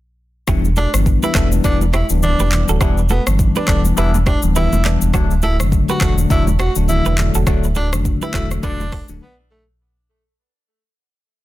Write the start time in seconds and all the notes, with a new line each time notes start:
0.47 E1 E3 G3 B3 D4 E4 G4, kick, cross-stick, shaker
0.65 shaker
0.76 D4 F#4 A4, high conga, shaker
0.93 G1 E3 G3 B3 D4, cross-stick, shaker
1.06 kick, shaker
1.23 E4 G4 B4, high conga, shaker
1.35 E1 E3 G3 B3 D4 E4 F#4 A4, kick, cross-stick, clap, shaker
1.52 high conga, shaker
1.64 E1 E3 G3 B3 D4, kick, shaker
1.81 high conga, shaker
1.93 E4 G4, cross-stick, high conga, shaker
2.09 D1 E3 G3 B3 D4, shaker
2.23 D4, low conga, shaker
2.39 E1 G4 B4, high conga, shaker
2.51 E3 G3 B3 D4, clap, high conga, low conga, shaker
2.68 D1 F#4 A4, shaker
2.80 E1 E3 G3 B3 D4 E4 G4, kick, cross-stick, shaker
2.98 shaker
3.09 B3 F#4 A4, high conga, shaker
3.26 G1 E3 G3 B3 D4, cross-stick, shaker
3.39 kick, shaker
3.56 D4 G4 B4, high conga, shaker
3.68 E1 E3 G3 B3 D4 F#4 A4, kick, cross-stick, clap, shaker
3.85 high conga, shaker
3.97 E1 E3 G3 B3 D4 E4 G4 B4, shaker
4.14 high conga, shaker
4.26 D4 E4 G4, kick, cross-stick, high conga, shaker
4.42 D1 E3 G3 B3 D4, shaker
4.56 E4 G4 B4, low conga, shaker
4.72 E1, high conga, shaker
4.84 E3 G3 B3 D4 B4 D5, clap, high conga, low conga, shaker
5.01 E1, shaker
5.14 D1 D3 F#3 A3 D4 F#4, kick, cross-stick, shaker
5.31 shaker
5.42 E4 F#4 A4, high conga, shaker
5.59 F#1 D3 F#3 A3 D4, cross-stick, shaker
5.72 kick, shaker
5.89 F#4 G4 B4, high conga, shaker
6.01 E1 D3 F#3 A3 D4 F#4 A4, kick, cross-stick, clap, shaker
6.18 high conga, shaker
6.30 E1 D3 F#3 A3 D4 E4, kick, shaker
6.47 high conga, shaker
6.59 D4 F#4, cross-stick, high conga, shaker
6.75 D1 D3 F#3 A3 D4, shaker
6.89 E4, low conga, shaker
7.05 E1 G4 B4, high conga, shaker
7.17 D3 F#3 A3 D4, clap, high conga, low conga, shaker
7.34 E1 F#4 A4, shaker
7.46 D1 D3 F#3 A3 D4 F#4, kick, cross-stick, shaker
7.64 shaker
7.75 D4 F#4 A4, high conga, shaker
7.92 F#1 D3 F#3 A3 D4, cross-stick, shaker
8.05 kick, shaker
8.22 E4 G4 B4, high conga, shaker
8.34 E1 D3 F#3 A3 D4 E4 F#4 A4, kick, cross-stick, clap, shaker
8.51 cross-stick, high conga, shaker
8.63 E1 D3 F#3 A3 D4 F#4 B4, kick, shaker
8.80 high conga, shaker
8.92 F#4 A4, kick, cross-stick, open hi-hat, high conga, shaker
9.08 D1 D3 F#3 A3 D4, shaker
9.22 B3
9.51 A3